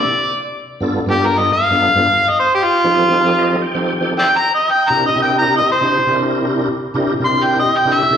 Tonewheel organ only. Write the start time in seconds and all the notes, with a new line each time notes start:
0.80 G2 B3 D4 F4 A4
1.06 G2 B3 D4 F4 A4
1.71 G2 B3 D4 F4 A4
1.96 G2 B3 D4 F4 A4
2.84 F3 C4 D#4 G4 A4
3.10 F3 C4 D#4 G4 A4
3.37 D#5
3.62 G5
3.75 F3 C4 D#4 G4 A4
3.87 G5
4.01 F3 C4 D#4 G4 A4
4.90 C3 D4 E4 G4 A#4
5.16 C3 D4 E4 G4 A#4
5.81 C3 D4 E4 G4 C5
6.07 C3 D4 E4 G4 A#4
6.94 C3 D4 E4 G4 A#4
7.20 C3 D4 E4 G4 A#4
7.85 C3 D4 E4 G4 A#4
8.11 C3 D4 E4 G4 A4